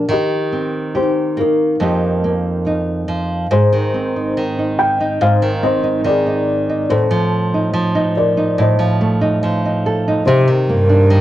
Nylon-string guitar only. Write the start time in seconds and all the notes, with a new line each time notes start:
Already playing: G4
0.08 D#3
0.52 C4
0.95 G4
1.37 A#3
1.80 F2 F3 A#3 D#4 G4
2.24 A#3
2.67 D#4
3.08 F3
3.51 G#2
3.73 D#3
3.94 C4
4.16 D#4
4.37 D#3
4.58 D#4
5.00 D#4
5.21 G#2
5.42 D#3
5.63 C4
5.83 D#4
6.04 D#3
6.27 D#4
6.70 D#4
6.90 A2
7.10 F3
7.54 D#4
7.73 F3
7.95 D#4
8.37 D#4
8.58 A2
8.79 F3
9.01 A3
9.21 D#4
9.43 F3
9.65 D#4
9.86 A4
10.08 D#4
10.27 C3
10.47 D#3
10.69 A#3
10.89 D4
11.10 D#3